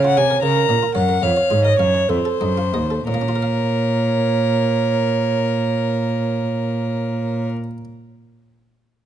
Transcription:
Already playing: harpsichord C#3, cello C#3, flute C#5
0.04 harpsichord F4, violin F#5
0.17 cello C3, harpsichord C3 C#5, violin G#5
0.30 harpsichord A#4
0.43 harpsichord C#3, cello C#3, flute A#4, violin A#5
0.56 harpsichord A#4
0.69 cello A#2, harpsichord A#2 C#4
0.82 harpsichord F4
0.95 harpsichord F#2 C#5, cello F#2, violin F#5
1.09 harpsichord A#4
1.22 harpsichord F2, cello F2, flute C#5, violin F5
1.37 harpsichord C#5
1.50 cello G#2, harpsichord G#2 F4
1.65 harpsichord A#4, violin D#5
1.79 cello F#2, harpsichord F#2 F5, violin C#5
1.94 harpsichord C#5
2.09 cello F2, harpsichord F2, flute A4, violin C5
2.25 harpsichord A4
2.41 cello F#2, harpsichord F#2 D#4
2.57 harpsichord F4
2.74 cello D#2, harpsichord D#2 D#5
2.90 harpsichord A4
3.07 harpsichord A#2, cello A#2, violin A#4, flute C#5
3.14 harpsichord A#3
3.21 harpsichord C#4
3.28 harpsichord F4
3.36 harpsichord A#4
3.42 harpsichord F5

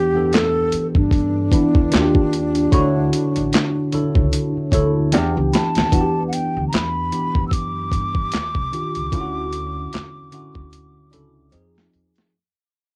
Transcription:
Already playing: upright bass E2, tine electric piano E3 B3 D4 G4, flute G4
0.14 tine electric piano E3 B3 D4 A4
0.33 flute A4, snare, clap, closed hi-hat
0.72 muted upright bass stroke, closed hi-hat
0.95 upright bass G2, flute D4, kick
1.11 kick, closed hi-hat
1.51 tine electric piano E3 B3 D4 E4, muted upright bass stroke, kick, closed hi-hat
1.75 upright bass E2, kick
1.91 upright bass D#2, tine electric piano D#3 D4 F4 F#4, snare, clap, closed hi-hat
2.01 tine electric piano G4
2.15 kick
2.33 closed hi-hat
2.55 closed hi-hat
2.72 upright bass D2, tine electric piano D3 E4 F#4 C#5, kick, closed hi-hat
3.13 closed hi-hat
3.36 upright bass A1, closed hi-hat
3.53 snare, clap, closed hi-hat
3.92 tine electric piano D3 E4 A4 C#5, muted upright bass stroke, closed hi-hat
4.15 upright bass C#2, kick
4.33 closed hi-hat
4.57 muted upright bass stroke
4.71 upright bass D2, tine electric piano D3 E4 A4 C#5, kick, closed hi-hat
5.12 upright bass E2, tine electric piano E3 B3 D4 G4 G5, snare, closed hi-hat
5.37 upright bass C#2
5.53 flute A5, tine electric piano B5, snare, closed hi-hat
5.75 upright bass D#2, snare, closed hi-hat
5.92 upright bass E2, tine electric piano E3 B3 D4 F#4, kick, closed hi-hat
6.01 tine electric piano G4
6.28 flute F#5
6.33 flute G5, closed hi-hat
6.57 upright bass D2
6.69 flute A#5
6.73 upright bass E2, flute B5, snare, clap, closed hi-hat
7.12 tine electric piano E3 B3 D4 G4, closed hi-hat
7.35 upright bass F#2, kick
7.48 flute E6, kick
7.53 flute D6, closed hi-hat
7.92 upright bass G2, kick, closed hi-hat
8.15 kick
8.32 upright bass D#2, snare, clap, closed hi-hat
8.55 upright bass C2, kick
8.71 tine electric piano D#3 D4 F4 G4, closed hi-hat
8.95 upright bass C#2, closed hi-hat
9.11 upright bass D2, tine electric piano D3 C#4 E4 F4, kick, closed hi-hat
9.21 tine electric piano F#4
9.53 closed hi-hat
9.93 upright bass E2, snare, clap, closed hi-hat
10.31 tine electric piano D3 C#4 E4 F#4, closed hi-hat
10.55 upright bass D2, kick
10.73 closed hi-hat
11.11 upright bass C#2, tine electric piano C#4 D4 E4 A4, closed hi-hat
11.51 upright bass F2, tine electric piano F3 C4 D#4 G#4, closed hi-hat
11.78 snare
11.93 upright bass E2, closed hi-hat
12.15 snare, closed hi-hat

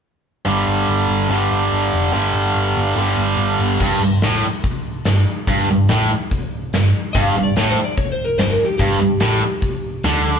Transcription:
0.45 picked electric bass G1, distorted electric guitar G2 D3 G3
0.67 picked electric bass G1
0.88 picked electric bass G1
1.09 picked electric bass G1
1.29 picked electric bass G1, distorted electric guitar G2 D3 G3
1.51 picked electric bass G1
1.71 picked electric bass G1
1.93 picked electric bass F1
2.13 picked electric bass G1, distorted electric guitar G2 D3 G3
2.34 picked electric bass G1
2.55 picked electric bass G1
2.77 picked electric bass G1
2.96 picked electric bass G1, distorted electric guitar G2 D3 G3
3.17 picked electric bass G1
3.37 picked electric bass G1
3.59 picked electric bass G1
3.80 picked electric bass G1, distorted electric guitar G2, kick, crash
3.99 picked electric bass G1
4.03 distorted electric guitar G2
4.21 picked electric bass A1, distorted electric guitar A2, snare, open hi-hat
4.64 kick, open hi-hat
5.05 picked electric bass G1, distorted electric guitar G2, snare, open hi-hat
5.47 picked electric bass G1, distorted electric guitar G2, kick, open hi-hat
5.69 picked electric bass G1, distorted electric guitar G2
5.89 picked electric bass A1, distorted electric guitar A2, snare, open hi-hat
6.31 kick, open hi-hat
6.73 picked electric bass G1, distorted electric guitar G2, snare, open hi-hat
7.13 picked electric bass G1, distorted electric guitar G2, electric slide guitar F5, kick, open hi-hat
7.35 picked electric bass G1, distorted electric guitar G2
7.44 electric slide guitar D5
7.54 picked electric bass A1, distorted electric guitar A2, electric slide guitar C#5, snare, open hi-hat
7.70 electric slide guitar C5
7.84 electric slide guitar D5
7.98 electric slide guitar C#5, kick, open hi-hat
8.12 electric slide guitar C5
8.24 electric slide guitar A#4
8.38 picked electric bass G1, distorted electric guitar G2, electric slide guitar C5, snare, open hi-hat
8.50 electric slide guitar A#4
8.65 electric slide guitar G4
8.78 picked electric bass G1, distorted electric guitar G2, electric slide guitar G4, kick, open hi-hat
9.00 picked electric bass G1, distorted electric guitar G2
9.20 picked electric bass A1, distorted electric guitar A2, snare, open hi-hat
9.62 kick, open hi-hat
10.04 picked electric bass D2, distorted electric guitar D3, snare, open hi-hat

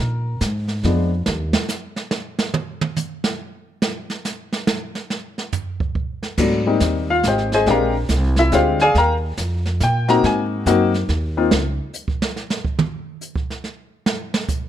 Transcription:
Already playing: grand piano A#4
0.00 upright bass A#2
0.41 upright bass G#2, kick, snare, hi-hat pedal
0.68 snare
0.83 upright bass F2, grand piano F3 G#3 B3 D4, kick, snare
1.26 upright bass D#2, snare
1.53 snare
1.68 snare, hi-hat pedal
1.96 snare
2.11 snare
2.39 snare
2.54 mid tom
2.81 mid tom
2.96 hi-hat pedal, mid tom
3.24 snare
3.82 snare
4.10 snare
4.25 snare, hi-hat pedal
4.53 snare
4.67 snare
4.95 snare
5.10 snare
5.38 snare
5.52 floor tom, hi-hat pedal
5.80 kick
5.95 kick
6.23 snare
6.38 upright bass G#2, grand piano F#3 A3 B3 D4, brush sweep, kick, snare, crash
6.67 grand piano G3 A#3 C4 D#4
6.80 upright bass D#2, kick, snare, hi-hat pedal
7.10 grand piano F4 F5
7.23 upright bass G#1, kick, snare, hi-hat pedal
7.27 grand piano G4 C5 D#5 G5
7.38 snare
7.52 grand piano G#4 C5 D#5 G#5, snare
7.66 upright bass A#1, grand piano G#3 C4 D4 G4, brush sweep, kick, snare
7.70 grand piano A#4 F5 G5 A#5
8.09 upright bass C2, kick, snare, hi-hat pedal
8.36 grand piano E4 E5, snare
8.52 upright bass D2, grand piano G#3 C4 D4 F4 G4 C5 D5 F5, kick, snare, hi-hat pedal
8.79 grand piano G#4 D5 F5 G#5, snare
8.95 upright bass D#2, grand piano A#4 F5 A#5, brush sweep, kick, snare
8.99 grand piano G5
9.37 upright bass F2, kick, snare, hi-hat pedal
9.66 snare
9.80 upright bass A#2, grand piano G5, kick, snare, hi-hat pedal
10.08 grand piano A#3 C4 D#4 F#4 A#5, snare
10.23 upright bass G#2, grand piano G#5, brush sweep, kick, snare
10.66 upright bass F#2, grand piano A#3 C4 D#4 F#4, kick, snare, hi-hat pedal
10.94 snare
11.09 upright bass D#2, kick, snare
11.37 grand piano A#3 C4 D#4 F4
11.51 upright bass C#2, snare
11.93 hi-hat pedal
12.08 kick
12.22 snare
12.36 snare
12.50 snare
12.65 kick
12.79 mid tom
13.21 hi-hat pedal
13.36 kick
13.50 snare
13.64 snare
14.06 snare
14.34 snare
14.48 kick, hi-hat pedal

